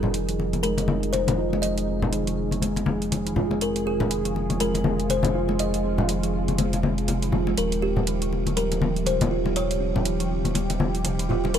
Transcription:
Already playing: F1 C3 F3 D#4 G#4
0.03 muted conga, low conga
0.14 D#3, closed hi-hat
0.29 F3, closed hi-hat
0.40 muted conga
0.53 F3, closed hi-hat, high conga
0.63 G#3 A#4, closed hi-hat
0.78 closed hi-hat, muted conga
0.88 high conga
1.03 closed hi-hat
1.13 C3 C5, closed hi-hat, muted conga
1.28 D#3, closed hi-hat, high conga, low conga
1.38 F4
1.52 G#3, muted conga
1.62 F3 D#5, closed hi-hat
1.78 closed hi-hat
1.88 C4
2.02 muted conga, low conga
2.12 D#3, closed hi-hat
2.27 F3, closed hi-hat
2.51 F3, closed hi-hat, high conga
2.62 G#3, closed hi-hat, high conga
2.76 closed hi-hat, muted conga
2.86 high conga
3.02 closed hi-hat
3.11 C3, closed hi-hat, muted conga, high conga
3.26 D#3, closed hi-hat
3.36 F4, high conga, low conga
3.51 G#3, muted conga
3.61 F3 F4 A#4, closed hi-hat
3.76 closed hi-hat
3.86 C4 G#4
4.00 muted conga, low conga
4.10 D#3, closed hi-hat
4.25 F3, closed hi-hat
4.36 muted conga
4.50 F3, closed hi-hat, high conga
4.60 G#3 A#4, closed hi-hat
4.75 closed hi-hat, muted conga
4.84 high conga
5.00 closed hi-hat
5.10 C3 C5, closed hi-hat, muted conga
5.23 D#3, closed hi-hat, high conga, low conga
5.34 F4
5.49 G#3, muted conga
5.59 F3 D#5, closed hi-hat
5.74 closed hi-hat
5.84 C4
5.98 muted conga, low conga
6.09 D#3, closed hi-hat
6.23 F3, closed hi-hat
6.48 F3, closed hi-hat, high conga
6.58 G#3, closed hi-hat, high conga
6.73 closed hi-hat, muted conga
6.83 high conga
6.98 closed hi-hat
7.08 C3, closed hi-hat, muted conga, high conga
7.22 D#3, closed hi-hat
7.32 F4, high conga, low conga
7.47 G#3, muted conga
7.57 D#1 F3 G4 A#4, closed hi-hat
7.72 closed hi-hat
7.82 C4 G4
7.96 muted conga, low conga
8.07 D#3, closed hi-hat
8.22 F3, closed hi-hat
8.33 muted conga
8.46 F3, closed hi-hat, high conga
8.57 G3 A#4, closed hi-hat
8.72 closed hi-hat, muted conga
8.82 high conga
8.96 closed hi-hat
9.06 C3 C5, closed hi-hat, muted conga
9.21 D#3, closed hi-hat, high conga, low conga
9.31 F4
9.46 G3, muted conga
9.56 F3 C#5, closed hi-hat
9.71 closed hi-hat
9.80 C4
9.96 muted conga, low conga
10.05 D#3, closed hi-hat
10.20 F3, closed hi-hat
10.45 F3, closed hi-hat, high conga
10.55 G3, closed hi-hat, high conga
10.70 closed hi-hat, muted conga
10.80 high conga
10.95 closed hi-hat
11.04 C3, closed hi-hat, muted conga, high conga
11.19 D#3, closed hi-hat
11.29 F4, high conga, low conga
11.44 G3, muted conga
11.54 F3 A#4, closed hi-hat

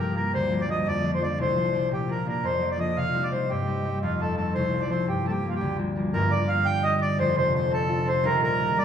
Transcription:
Already playing: G2 F3 C4
0.00 G3 A#3 A#4
0.15 F3 G3 A#3 A#4
0.33 D2 C5
0.51 F3 G3 A#3
0.61 D5
0.68 F3 G3 A#3 D#5
0.86 F2 D5
1.03 F3 A3 D4
1.15 C5
1.21 F3 A3 D4 D5
1.38 C2 C5
1.56 F3 A3 D4
1.73 F3 A3 D4
1.91 A#2 G4
2.08 F3 A#3 D4 A#4
2.26 F3 A#3 D4 A#4
2.43 F2 C5
2.61 F3 A#3 D4
2.72 D5
2.80 F3 A#3 D4 D#5
2.97 C3 F5
3.14 G3 C4 D#4
3.23 D5
3.32 G3 C4 D#4 C5
3.50 G2 G4
3.67 G3 C4 D#4
3.85 G3 C4 D#4
4.03 F2 F4
4.20 F3 A3 C4 A4
4.37 F3 A3 C4 A4
4.54 C2 C5
4.72 F3 A3 C4
4.81 D5
4.90 F3 A3 C4 C5
5.07 G2 G4
5.25 F3 G3 A#3 A4
5.31 G4
5.43 F3 G3 A#3
5.49 F4
5.55 G4
5.61 D2
5.78 F3 G3 A#3
5.96 F3 G3 A#3
6.13 G1 G2 A#4
6.31 D3 D5
6.48 A#3 F5
6.65 D4 G5
6.83 G4 D#5
7.01 D4 D5
7.18 F1 F2 C5
7.36 C3 C5
7.54 A3 C5
7.71 C4 A4
7.89 F4
8.05 C4 C5
8.23 D#1 D#2 A#4
8.41 A#2 A#4
8.59 D#3
8.77 G3 D5

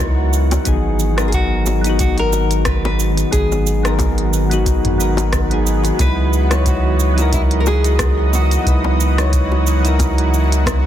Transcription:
Already playing: C#2 E3 F#3 B3 D#4 E4 F#4 A#4 B4 C#5
0.00 kick, shaker
0.33 shaker
0.51 closed hi-hat, high bongo, shaker
0.64 G#1 D#3 F#3 G#3 B3 D#4 F#4 G#4, kick, closed hi-hat, shaker
1.00 shaker
1.17 F#3 B3 D#4 A#4, cross-stick, closed hi-hat, high bongo, shaker
1.28 G#4
1.32 F#4, kick, closed hi-hat, shaker
1.66 high bongo, shaker
1.81 F#3 B3, closed hi-hat, shaker
1.87 D#4 F#4
1.99 F#4, kick, closed hi-hat, shaker
2.18 A#4, closed hi-hat
2.33 high bongo, shaker
2.51 closed hi-hat, shaker
2.65 B4, kick, cross-stick, closed hi-hat, shaker
2.85 B4, high bongo
3.00 shaker
3.17 closed hi-hat, shaker
3.31 G#1 F#3 B3 D#4 G#4, kick, closed hi-hat, shaker
3.52 high bongo, shaker
3.67 shaker
3.83 F#3 B3 D#4 A#4, cross-stick, closed hi-hat, shaker
3.99 kick, closed hi-hat, high bongo, shaker
4.18 closed hi-hat
4.33 shaker
4.50 F#3 B3 D#4 F#4, closed hi-hat, shaker
4.66 kick, closed hi-hat, high bongo, shaker
4.85 closed hi-hat, mid tom
4.98 F#3 B3 D#4 A#4, shaker
5.17 closed hi-hat, high bongo, shaker
5.33 kick, cross-stick, closed hi-hat, shaker
5.50 F#3 B3 D#4 G#4, closed hi-hat
5.67 shaker
5.84 closed hi-hat, high bongo, shaker
5.98 C#2 E3 F#3 D#4 E4 B4 D#5, kick, closed hi-hat, high bongo, shaker
6.33 shaker
6.49 F#3 D#4 E4 C#5, cross-stick, closed hi-hat, high bongo, shaker
6.66 F#4, kick, closed hi-hat, shaker
7.00 shaker
7.14 F#3 D#4, closed hi-hat
7.18 E4 A#4, high bongo, shaker
7.33 E4, kick, closed hi-hat, shaker
7.51 closed hi-hat
7.60 A#4
7.66 G#4, high bongo, shaker
7.84 closed hi-hat, shaker
7.99 kick, cross-stick, closed hi-hat, shaker
8.33 F#4, high bongo, shaker
8.51 closed hi-hat, shaker
8.64 C#2 F#3 D#4 E4, kick, closed hi-hat, shaker
8.68 B4
8.84 high bongo
9.00 shaker
9.16 F#3 D#4 E4 C#5, cross-stick, closed hi-hat, shaker
9.33 kick, closed hi-hat, shaker
9.52 high bongo
9.67 shaker
9.80 F#3 D#4
9.85 E4 A#4, closed hi-hat, shaker
9.99 kick, closed hi-hat, high bongo, shaker
10.18 closed hi-hat
10.34 shaker
10.52 closed hi-hat, shaker
10.66 kick, cross-stick, closed hi-hat, high bongo, shaker

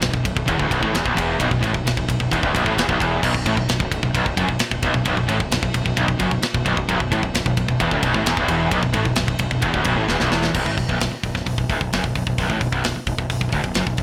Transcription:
0.01 B0 B1, snare, ride
0.14 B0 B1, kick
0.25 B0 B1, kick, ride
0.36 B0 B1, kick
0.48 E1 E2, kick, ride
0.59 D1 D2, kick
0.71 B0 B1, kick, ride
0.82 A1 A2, kick
0.94 E1 E2, snare, ride
1.05 B0 B1, kick
1.17 E1 E2, kick, ride
1.40 B0 B1, kick, ride
1.51 B0 B1, kick
1.62 A1 A2, kick, ride
1.74 B0 B1, kick
1.86 B0 B1, snare, ride
1.97 B0 B1, kick
2.08 B0 B1, kick, ride
2.20 B0 B1, kick
2.31 E1 E2, kick, ride
2.42 D1 D2, kick
2.54 B0 B1, kick, ride
2.66 A1 A2, kick
2.77 E1 E2, snare, ride
2.88 B0 B1, kick
2.99 E1 E2, kick, ride
3.22 B0 B1, kick, crash
3.34 B0 B1, kick
3.46 A1 A2, kick, ride
3.57 B0 B1, kick
3.68 B0 B1, snare, ride
3.79 B0 B1, kick
3.91 B0 B1, kick, ride
4.03 B0 B1, kick
4.14 B0 B1, kick, ride
4.26 B0 B1, kick
4.37 F#1 F#2, kick, ride
4.49 B0 B1, kick
4.59 muted overdriven electric guitar stroke, muted fingered electric bass stroke, muted distorted electric guitar stroke, snare, ride
4.71 B0 B1, kick
4.82 B0 B1, kick, ride
4.94 B0 B1, kick
5.05 B0 B1, kick, ride
5.17 B0 B1, kick
5.28 A1 A2, kick, ride
5.40 B0 B1, kick
5.51 B0 B1, snare, ride
5.62 B0 B1, kick
5.74 B0 B1, kick, ride
5.85 B0 B1, kick
5.97 B0 B1, kick, ride
6.08 B0 B1, kick
6.19 F#1 F#2, kick, ride
6.31 B0 B1, kick
6.42 muted distorted electric guitar stroke, muted fingered electric bass stroke, muted overdriven electric guitar stroke, snare, ride
6.54 B0 B1, kick
6.65 B0 B1, kick, ride
6.77 B0 B1, kick
6.88 B0 B1, kick, ride
7.00 B0 B1, kick
7.12 A1 A2, kick, ride
7.23 B0 B1, kick
7.34 B0 B1, snare, ride
7.46 B0 B1, kick
7.57 B0 B1, kick, ride
7.68 B0 B1, kick
7.80 E1 E2, kick, ride
7.91 D1 D2, kick
8.03 B0 B1, kick, ride
8.14 A1 A2, kick
8.23 E1 E2, snare, ride
8.37 B0 B1, kick
8.48 E1 E2, kick, ride
8.71 B0 B1, kick, ride
8.83 B0 B1, kick
8.93 A1 A2, kick, ride
9.05 B0 B1, kick
9.16 B0 B1, snare, ride
9.27 B0 B1, kick
9.39 B0 B1, kick, ride
9.51 B0 B1, kick
9.61 E1 E2, kick, ride
9.73 D1 D2, kick
9.84 B0 B1, kick, ride
9.96 A1 A2
10.08 E1 E2, snare
10.19 B0 B1, snare
10.31 E1 E2, snare
10.44 snare
10.54 B0 B1, kick, crash
10.65 A1 A2, kick
10.77 B0 B1, kick, open hi-hat
10.89 B0 B1, kick
11.00 B0 B1, snare, open hi-hat
11.12 muted fingered electric bass stroke, muted distorted electric guitar stroke
11.23 B0 B1, kick, open hi-hat
11.35 B0 B1, kick, snare
11.46 B0 B1, kick, open hi-hat
11.58 B0 B1, kick
11.69 D1 D2, kick, open hi-hat
11.81 B0 B1, kick
11.93 F#1 F#2, snare, open hi-hat
12.04 B0 B1, kick
12.15 B0 B1, kick, open hi-hat
12.27 B0 B1, kick
12.38 B0 B1, kick, open hi-hat
12.50 A1 A2, kick
12.61 B0 B1, kick, open hi-hat
12.72 B0 B1, kick
12.84 B0 B1, snare, open hi-hat
12.96 muted distorted electric guitar stroke, muted fingered electric bass stroke
13.06 B0 B1, kick, open hi-hat
13.18 B0 B1, kick
13.30 B0 B1, kick, open hi-hat
13.41 B0 B1, kick
13.52 D1 D2, kick, open hi-hat
13.64 B0 B1, kick
13.74 F#1 F#2, snare, open hi-hat
13.86 B0 B1, kick
13.97 B0 B1, kick, open hi-hat

